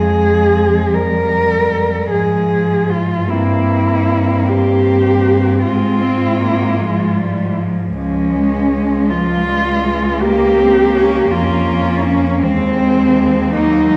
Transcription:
0.00 2.07 F2 soft
0.00 0.95 G#3 soft
0.00 2.10 G#3 soft
0.00 0.95 G#4 medium
0.93 2.11 G3 soft
0.93 2.10 A#4 medium
2.10 3.26 G#2 soft
2.10 3.29 F3 soft
2.10 3.29 G#3 soft
2.10 2.91 G#4 medium
2.90 3.31 F4 medium
3.28 5.65 G2 soft
3.28 5.63 A#3 soft
3.28 6.80 C4 soft
3.28 4.49 E4 medium
4.48 5.63 G4 medium
5.63 7.95 G#2 soft
5.63 6.03 G#3 soft
5.63 7.54 F4 medium
6.02 6.41 C4 soft
6.41 6.82 A#3 soft
6.81 7.94 F3 soft
6.81 7.20 G#3 soft
7.19 7.58 G3 soft
7.57 7.96 F3 soft
7.95 11.27 C#2 soft
7.95 8.35 F3 soft
7.95 10.25 G#3 soft
7.95 9.11 C#4 medium
8.34 8.72 G#3 soft
8.73 9.11 G#3 soft
9.10 9.46 F3 soft
9.10 10.23 F4 medium
9.47 9.85 G3 soft
9.83 10.23 G#3 soft
10.21 12.43 A#3 soft
10.21 10.60 A#3 medium
10.21 11.33 G4 medium
10.59 10.94 C4 soft
10.94 11.30 C#4 soft
11.30 12.43 F2 soft
11.30 12.41 C#4 soft
11.30 12.08 F4 medium
12.06 12.44 C#4 medium
12.42 13.97 D#2 soft
12.42 13.55 G#3 soft
12.42 13.54 C4 medium
13.52 13.97 F#3 medium
13.52 13.88 A#3 soft
13.52 13.97 D#4 medium
13.89 13.97 G#3 medium

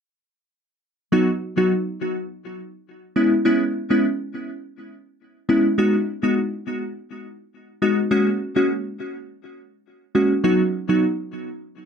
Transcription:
1.12 1.30 F#3 medium
1.12 1.30 B3 medium
1.12 1.30 D#4 medium
1.12 1.30 F#4 loud
1.57 1.73 F#3 medium
1.57 1.73 B3 medium
1.57 1.73 D#4 medium
1.57 1.73 F#4 medium
3.16 3.34 G#3 medium
3.16 3.34 B3 medium
3.16 3.34 C#4 medium
3.16 3.34 E4 medium
3.45 3.63 G#3 medium
3.45 3.63 B3 medium
3.45 3.63 C#4 medium
3.45 3.63 E4 medium
3.90 4.06 G#3 medium
3.90 4.06 B3 medium
3.90 4.06 C#4 medium
3.90 4.06 E4 medium
5.49 5.67 G#3 medium
5.49 5.67 B3 medium
5.49 5.67 C#4 medium
5.49 5.67 E4 medium
5.78 5.96 G#3 medium
5.78 5.96 B3 medium
5.78 5.96 D#4 medium
5.78 5.96 F#4 loud
6.23 6.39 G#3 medium
6.23 6.39 B3 medium
6.23 6.39 D#4 medium
6.23 6.39 F#4 medium
7.82 8.00 G#3 medium
7.82 8.00 B3 medium
7.82 8.00 D#4 medium
7.82 8.00 F#4 medium
8.11 8.29 G#3 medium
8.11 8.29 A#3 medium
8.11 8.29 C#4 medium
8.11 8.29 F#4 medium
8.56 8.72 G#3 medium
8.56 8.72 A#3 medium
8.56 8.72 C#4 medium
8.56 8.72 F#4 medium
10.15 10.33 G#3 medium
10.15 10.33 A#3 medium
10.15 10.33 C#4 medium
10.15 10.33 F#4 medium
10.44 10.62 F#3 medium
10.44 10.62 B3 medium
10.44 10.62 D#4 medium
10.44 10.62 F#4 loud
10.89 11.05 F#3 medium
10.89 11.05 B3 medium
10.89 11.05 D#4 medium
10.89 11.05 F#4 medium

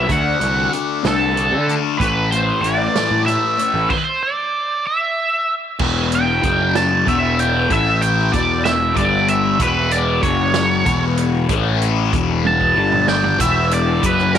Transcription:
0.00 0.10 E5 medium
0.08 0.34 D2 medium
0.08 0.72 D3 medium
0.08 0.42 A3 medium
0.08 0.39 D4 medium
0.08 0.69 F#5 medium
0.08 kick medium
0.08 closed hi-hat medium
0.40 0.66 C2 medium
0.40 1.04 A3 medium
0.40 1.02 D4 medium
0.40 closed hi-hat medium
0.73 closed hi-hat medium
1.03 1.53 C2 medium
1.03 1.35 D3 medium
1.03 1.37 A3 medium
1.03 1.38 D4 medium
1.03 snare medium
1.03 closed hi-hat medium
1.07 1.73 A4 medium
1.37 1.98 D3 medium
1.37 1.70 A3 medium
1.37 1.66 D4 medium
1.37 closed hi-hat soft
1.52 1.77 D3 medium
1.67 1.99 A3 soft
1.67 1.97 D4 medium
1.67 closed hi-hat soft
1.98 2.51 A1 medium
1.98 2.62 A2 medium
1.98 2.35 E3 medium
1.98 2.28 B4 medium
1.98 kick loud
1.98 closed hi-hat medium
2.02 2.31 A3 medium
2.31 2.93 A3 medium
2.31 2.64 C5 medium
2.31 closed hi-hat medium
2.36 2.95 E3 soft
2.61 2.87 A1 medium
2.61 3.26 D5 medium
2.61 closed hi-hat medium
2.95 3.25 A2 medium
2.95 3.27 E3 medium
2.95 3.28 A3 medium
2.95 snare medium
2.95 closed hi-hat medium
3.11 3.36 A2 medium
3.26 3.88 A2 medium
3.26 3.60 E3 medium
3.26 3.56 A3 medium
3.26 3.91 E5 medium
3.26 closed hi-hat medium
3.58 3.90 E3 medium
3.58 3.88 A3 medium
3.58 closed hi-hat medium
3.74 3.86 A1 medium
3.89 3.97 C5 medium
3.89 kick medium
3.89 crash medium
3.98 4.04 B4 medium
4.04 4.22 C5 medium
4.23 4.86 D5 medium
4.87 5.53 E5 medium
5.79 6.39 E1 medium
5.79 6.42 E2 medium
5.79 6.43 B2 medium
5.79 6.43 E3 medium
5.79 kick medium
5.79 crash loud
6.12 6.75 G5 medium
6.12 closed hi-hat medium
6.43 7.03 F#1 medium
6.43 7.06 F#2 medium
6.43 7.06 C#3 medium
6.43 7.07 F#3 medium
6.43 kick medium
6.43 closed hi-hat medium
6.75 7.06 A5 medium
6.75 snare loud
6.75 closed hi-hat medium
7.07 7.66 E1 medium
7.07 7.69 E2 medium
7.07 7.69 B2 medium
7.07 7.69 E3 medium
7.07 7.38 E5 medium
7.07 kick medium
7.07 closed hi-hat medium
7.39 7.70 G5 medium
7.39 closed hi-hat medium
7.69 8.30 A1 medium
7.69 8.32 A2 medium
7.69 8.33 E3 medium
7.69 8.33 A3 medium
7.69 8.02 E5 medium
7.69 kick medium
7.69 closed hi-hat medium
8.01 8.33 G5 medium
8.01 closed hi-hat medium
8.32 8.93 E1 medium
8.32 8.95 E2 medium
8.32 8.96 B2 medium
8.32 8.96 E3 medium
8.32 8.64 D5 medium
8.32 kick medium
8.32 closed hi-hat medium
8.65 8.96 E5 medium
8.65 snare medium
8.65 closed hi-hat medium
8.95 9.56 G1 medium
8.95 9.59 G2 medium
8.95 9.59 D3 medium
8.95 9.59 G3 loud
8.95 9.28 D5 medium
8.95 kick loud
8.95 closed hi-hat medium
9.28 9.60 E5 medium
9.28 closed hi-hat medium
9.59 10.20 E1 medium
9.59 10.22 E2 medium
9.59 10.22 B2 medium
9.59 10.23 E3 medium
9.59 9.92 B4 medium
9.59 kick medium
9.59 closed hi-hat medium
9.91 10.22 D5 medium
9.91 closed hi-hat medium
10.23 10.83 F#1 medium
10.23 10.84 F#2 medium
10.23 10.85 C#3 medium
10.23 10.85 F#3 loud
10.23 11.03 C#5 medium
10.23 kick medium
10.23 closed hi-hat medium
10.54 snare loud
10.54 closed hi-hat medium
10.84 11.46 E1 medium
10.84 11.48 E2 medium
10.84 11.48 B2 medium
10.84 11.48 E3 medium
10.84 kick medium
10.84 closed hi-hat medium
11.17 closed hi-hat medium
11.48 12.09 A1 medium
11.48 12.12 A2 medium
11.48 12.13 E3 medium
11.48 12.13 A3 loud
11.48 kick medium
11.48 closed hi-hat medium
11.81 closed hi-hat medium
12.13 12.73 E1 medium
12.13 12.76 E2 medium
12.13 12.76 B2 medium
12.13 12.77 E3 medium
12.13 kick loud
12.13 closed hi-hat medium
12.45 13.08 A5 medium
12.45 high tom medium
12.61 kick medium
12.76 13.36 G1 medium
12.76 13.39 G2 medium
12.76 13.39 D3 medium
12.76 13.40 G3 medium
12.92 mid tom medium
13.08 13.40 G5 medium
13.08 snare medium
13.24 floor tom medium
13.39 13.99 E1 medium
13.39 14.02 E2 medium
13.39 14.03 B2 medium
13.39 14.03 E3 medium
13.39 13.72 E5 medium
13.39 kick medium
13.39 closed hi-hat medium
13.39 shaker medium
13.71 14.04 D5 medium
13.71 closed hi-hat medium
14.03 14.38 F#1 medium
14.03 14.38 F#2 medium
14.03 14.38 C#3 medium
14.03 14.38 F#3 medium
14.03 14.35 B4 medium
14.03 kick loud
14.03 closed hi-hat medium
14.03 shaker medium
14.20 shaker soft
14.35 snare medium
14.35 closed hi-hat medium

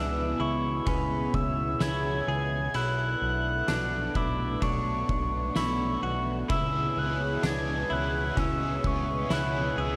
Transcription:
0.00 0.35 C#2 loud
0.00 2.71 B2 medium
0.00 2.71 B3 medium
0.00 0.40 D4 medium
0.00 2.71 E4 medium
0.00 2.71 G#4 medium
0.00 0.85 B4 medium
0.00 0.42 E6 loud
0.40 0.81 C#2 loud
0.40 0.87 E4 medium
0.40 0.87 C#6 loud
0.86 1.28 C#2 loud
0.86 1.81 C#4 medium
0.86 2.73 C#5 medium
0.86 1.36 B5 loud
0.86 kick loud
0.86 ride medium
1.34 1.75 C#2 loud
1.34 1.83 E6 loud
1.34 kick medium
1.80 2.22 C#2 loud
1.80 2.28 E4 medium
1.80 2.77 G#6 loud
1.80 snare loud
1.80 ride medium
1.80 tambourine medium
2.28 2.69 C#2 loud
2.28 2.74 G#4 medium
2.74 3.16 B1 loud
2.74 6.46 A3 medium
2.74 6.46 B3 medium
2.74 6.46 D4 medium
2.74 3.69 E4 loud
2.74 4.18 F#6 loud
2.74 ride medium
3.22 3.63 B1 loud
3.68 4.10 B1 loud
3.68 4.15 D4 medium
3.68 snare loud
3.68 ride medium
3.68 tambourine medium
4.15 4.57 B1 loud
4.15 4.63 E4 medium
4.15 4.62 D6 loud
4.15 kick medium
4.62 5.04 B1 loud
4.62 5.56 D4 medium
4.62 5.52 C#6 loud
4.62 kick loud
4.62 ride medium
5.09 5.50 B1 loud
5.09 kick medium
5.56 5.97 B1 loud
5.56 6.03 E4 medium
5.56 6.23 C#6 loud
5.56 snare loud
5.56 ride medium
5.56 tambourine medium
6.03 6.44 B1 loud
6.03 6.49 F#4 medium
6.49 6.91 C#2 medium
6.49 9.96 B2 medium
6.49 6.96 C#3 medium
6.49 6.97 G#3 medium
6.49 6.97 B3 medium
6.49 7.43 E4 loud
6.49 9.96 E4 medium
6.49 6.97 E4 medium
6.49 9.96 G#4 medium
6.49 6.94 G#4 loud
6.49 9.96 B4 medium
6.49 9.96 C#5 medium
6.49 7.00 E6 loud
6.49 kick loud
6.49 ride medium
6.95 7.38 C#2 medium
6.95 7.44 E4 medium
6.95 7.43 G#4 medium
6.95 7.44 F#6 loud
7.01 7.43 B3 soft
7.43 7.85 C#2 loud
7.43 7.90 G#3 medium
7.43 7.91 B3 medium
7.43 7.90 D4 medium
7.43 7.91 E4 medium
7.43 7.94 G#6 loud
7.43 snare loud
7.43 ride medium
7.43 tambourine medium
7.48 7.87 G#4 medium
7.88 8.32 C#2 loud
7.88 8.37 E4 medium
7.88 8.38 E4 medium
7.88 8.36 G#4 medium
7.88 8.41 F#6 loud
7.94 8.37 B3 soft
8.36 8.79 C#2 loud
8.36 8.84 C#3 medium
8.36 8.84 G#3 medium
8.36 8.85 B3 medium
8.36 9.31 C#4 medium
8.36 8.85 E4 medium
8.36 8.82 G#4 medium
8.36 8.88 E6 loud
8.36 kick loud
8.36 ride medium
8.83 9.26 C#2 loud
8.83 9.32 E4 medium
8.83 9.30 G#4 medium
8.83 9.34 C#6 loud
8.83 kick medium
8.89 9.30 B3 medium
9.30 9.72 C#2 loud
9.30 9.77 G#3 medium
9.30 9.78 B3 medium
9.30 9.78 E4 medium
9.30 9.81 F#6 loud
9.30 snare loud
9.30 ride medium
9.30 tambourine medium
9.34 9.78 E4 medium
9.34 9.75 G#4 medium
9.76 9.96 C#2 medium
9.76 9.96 E4 medium
9.76 9.96 G#4 medium
9.76 9.96 E6 loud
9.82 9.96 B3 medium

